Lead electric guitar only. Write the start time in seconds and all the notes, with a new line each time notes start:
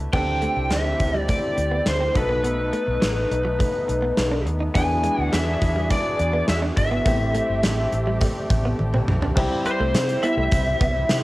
0.14 G5
0.72 E5
1.18 D5
1.30 D5
1.88 C5
2.17 B4
4.75 G#5
5.21 F#5
5.33 E5
5.91 D5
6.50 E5
6.78 E5
8.24 D5
9.67 C5
10.23 E5